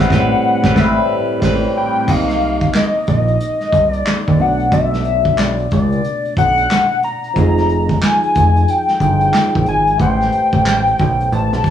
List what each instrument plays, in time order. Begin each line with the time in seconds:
Already playing: tine electric piano A2 G3
0.00 tine electric piano C4 B4, analog synth lead F#5
0.08 analog synth bass A1, tine electric piano A2 G3 C4, kick, snare
0.13 tine electric piano B4
0.61 analog synth bass A1, tine electric piano A2 G3 C4, kick, snare
0.66 tine electric piano B4
0.74 analog synth bass A1, tine electric piano A2 G3 C4, kick, snare
0.79 tine electric piano B4, analog synth lead E5
1.40 analog synth bass A1, tine electric piano A2 G3 C4, kick, snare, crash
1.45 tine electric piano B4
1.77 analog synth lead G5
2.06 analog synth bass C2, tine electric piano C3 A#3 D#4, kick, crash
2.11 tine electric piano D#5, analog synth lead F5
2.29 snare, closed hi-hat
2.40 closed hi-hat
2.60 kick, closed hi-hat
2.74 analog synth lead D#5, snare, clap
3.07 analog synth bass A#1, analog synth lead D#5, kick, closed hi-hat
3.28 closed hi-hat
3.40 closed hi-hat
3.61 snare, closed hi-hat
3.73 analog synth bass C2, kick, closed hi-hat
3.92 analog synth lead D5, closed hi-hat
4.06 snare, clap
4.28 analog synth bass D#2, kick
4.37 analog synth bass B1, tine electric piano B2 A3 D4, open hi-hat
4.41 tine electric piano D5, analog synth lead F#5
4.59 closed hi-hat
4.72 analog synth bass B1, analog synth lead E5, kick, closed hi-hat
4.94 snare
5.05 closed hi-hat
5.24 kick, closed hi-hat
5.38 analog synth lead D5, snare, clap
5.59 closed hi-hat
5.71 analog synth bass C#2, analog synth lead D5, kick, closed hi-hat
5.92 closed hi-hat
6.04 closed hi-hat
6.25 closed hi-hat
6.37 analog synth bass B1, analog synth lead F#5, kick, closed hi-hat
6.58 closed hi-hat
6.71 snare, clap
6.91 closed hi-hat
7.03 analog synth lead A#5, closed hi-hat
7.24 closed hi-hat
7.34 analog synth bass F1, tine electric piano F3 D#4 F4, kick, closed hi-hat
7.39 tine electric piano G#4
7.57 snare, closed hi-hat
7.69 closed hi-hat
7.89 kick, closed hi-hat
8.02 analog synth lead G#5, snare, clap
8.23 closed hi-hat
8.35 analog synth bass F1, kick, closed hi-hat
8.56 closed hi-hat
8.68 analog synth lead G5, closed hi-hat
8.88 snare, closed hi-hat
8.99 analog synth bass G1, tine electric piano F3 D#4 F4 G#4, kick, closed hi-hat
9.21 closed hi-hat
9.34 snare, clap
9.54 analog synth bass A#1, kick, closed hi-hat
9.66 analog synth bass G#1, analog synth lead G#5, closed hi-hat
9.87 closed hi-hat
9.98 analog synth bass A1, tine electric piano A3 G4 B4, analog synth lead G5, kick, closed hi-hat
10.03 tine electric piano C5
10.21 snare, closed hi-hat
10.32 analog synth bass A1, closed hi-hat
10.52 analog synth bass A1, kick, closed hi-hat
10.66 snare, clap
10.87 closed hi-hat
10.99 analog synth bass B1, kick, closed hi-hat
11.20 closed hi-hat
11.32 analog synth bass A1, analog synth lead A5, closed hi-hat
11.53 analog synth bass B1, snare, closed hi-hat
11.64 kick, closed hi-hat